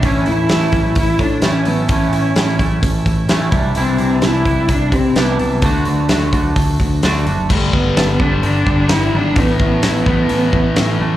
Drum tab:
CC |--------|--------|--------|--------|
HH |oooooooo|oooooooo|oooooooo|oooooooo|
SD |--o---o-|--o---o-|--o---o-|--o---o-|
BD |o--ooo--|o--ooo-o|---ooo--|o--ooo--|

CC |x-------|--------|
HH |--o-o-o-|o-o-o-o-|
SD |--o---o-|--o---o-|
BD |oo-o-o--|oo-o-o--|